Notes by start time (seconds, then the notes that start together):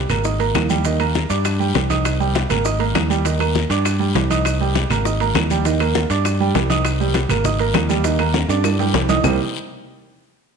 0.09 G#1 A#3 A#4 A#5, high conga, low conga, high timbale, short guiro, claves, maracas
0.24 D#4 D#5 D#6, high bongo, high conga, long guiro, maracas
0.39 A#3 A#4 A#5, high conga, high timbale, maracas
0.54 D#2, high bongo, low bongo, high conga, high timbale, low timbale, short guiro, claves, maracas
0.69 G3 G4 G5, high conga, short guiro, maracas
0.84 D#3 D#4 D#5, high bongo, high timbale, long guiro, maracas
1.00 A#3 A#4 A#5, high bongo, high conga, high timbale, claves, maracas
1.15 high bongo, high conga, low timbale, short guiro, maracas
1.29 G2 D4 D5 D6, high bongo, high conga, high timbale, short guiro, maracas
1.45 high bongo, high conga, high timbale, long guiro, claves, maracas
1.60 G3 G4 G5, high conga, maracas
1.74 C2, high bongo, low bongo, high conga, high timbale, low timbale, short guiro, maracas
1.90 D#4 D#5 D#6, high bongo, high conga, high timbale, short guiro, maracas
2.05 high bongo, high timbale, long guiro, claves, maracas
2.20 G3 G4 G5, high conga, maracas
2.35 high bongo, high conga, high timbale, low timbale, short guiro, maracas
2.50 G#1 A#3 A#4 A#5, high conga, low conga, high timbale, short guiro, claves, maracas
2.64 D#4 D#5 D#6, high bongo, high conga, long guiro, maracas
2.79 A#3 A#4 A#5, high conga, high timbale, maracas
2.94 D#2, high bongo, low bongo, high conga, high timbale, low timbale, short guiro, claves, maracas
3.10 G3 G4 G5, short guiro, maracas
3.25 D#3 D#4 D#5, high bongo, high conga, high timbale, long guiro, maracas
3.39 A#3 A#4 A#5, high bongo, high conga, high timbale, claves, maracas
3.55 high bongo, high conga, low timbale, short guiro, maracas
3.70 G2 D4 D5 D6, high bongo, high conga, high timbale, short guiro, maracas
3.85 high bongo, high conga, high timbale, long guiro, claves, maracas
3.99 G3 G4 G5, high conga, maracas
4.15 C2, high bongo, low bongo, high conga, high timbale, low timbale, short guiro, maracas
4.30 D#4 D#5 D#6, high bongo, high conga, high timbale, short guiro, maracas
4.45 high bongo, high conga, high timbale, long guiro, claves, maracas
4.60 G3 G4 G5, high conga, maracas
4.75 high bongo, high conga, high timbale, low timbale, short guiro, maracas
4.90 G#1 A#3 A#4 A#5, high conga, low conga, high timbale, short guiro, claves, maracas
5.05 D#4 D#5 D#6, high bongo, high conga, long guiro, maracas
5.20 A#3 A#4 A#5, high conga, high timbale, maracas
5.35 D#2, high bongo, low bongo, high conga, high timbale, low timbale, short guiro, claves, maracas
5.50 G3 G4 G5, high conga, short guiro, maracas
5.65 D#3 D#4 D#5, high bongo, high conga, high timbale, long guiro, maracas
5.80 A#3 A#4 A#5, high bongo, high conga, high timbale, claves, maracas
5.95 high bongo, high conga, low timbale, short guiro, maracas
6.10 G2 D4 D5 D6, high bongo, high conga, high timbale, short guiro, maracas
6.25 high bongo, high conga, high timbale, long guiro, claves, maracas
6.40 G3 G4 G5, high conga, maracas
6.54 C2, high bongo, low bongo, high conga, high timbale, low timbale, short guiro, maracas
6.70 D#4 D#5 D#6, high bongo, high conga, high timbale, short guiro, maracas
6.85 high bongo, high conga, high timbale, long guiro, claves, maracas
7.00 G3 G4 G5, high conga, maracas
7.14 high bongo, high conga, high timbale, low timbale, short guiro, maracas
7.29 G#1 A#3 A#4 A#5, high conga, low conga, high timbale, short guiro, claves, maracas
7.44 D#4 D#5 D#6, high bongo, high conga, low conga, long guiro, maracas
7.59 A#3 A#4 A#5, high conga, high timbale, maracas
7.74 D#2, high bongo, low bongo, high conga, high timbale, low timbale, short guiro, claves, maracas
7.89 G3 G4 G5, high conga, short guiro, maracas
8.04 D#3 D#4 D#5, high bongo, high timbale, long guiro, maracas
8.19 A#3 A#4 A#5, high bongo, high conga, high timbale, claves, maracas
8.34 high bongo, high conga, high timbale, short guiro, maracas
8.49 G2 D4 D5 D6, high bongo, high conga, high timbale, short guiro, maracas
8.64 high bongo, high conga, low timbale, long guiro, claves, maracas
8.79 G3 G4 G5, high conga, low timbale, maracas
8.93 C2, high bongo, low bongo, high conga, low timbale, short guiro, maracas
9.09 D#4 D#5 D#6, high bongo, high conga, low timbale, short guiro, maracas
9.24 C2 C3 G3 A#3 C4 D#4 G4, low bongo, low conga, low timbale, long guiro, claves, maracas